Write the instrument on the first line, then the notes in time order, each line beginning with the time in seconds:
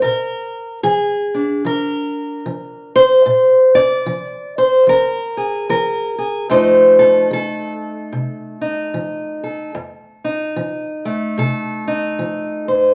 steel-string acoustic guitar
0.02 A#2 A#4
0.83 F3 G#4
1.34 D4
1.65 F3 A#4
2.46 F3
2.96 C5
3.26 A#2
3.75 D5
4.06 F3
4.58 C5
4.87 F3 A#4
5.37 G#4
5.69 F3 A#4
6.18 G#4
6.49 F2 F3 A3 D#4 C5
6.99 A4
7.31 F3 A4
8.13 C3
8.61 D#4
8.94 F3
9.43 A4
9.75 F2
10.24 D#4
10.56 F3
11.05 A3
11.38 C3 A4
11.88 D#4
12.19 F3
12.68 C5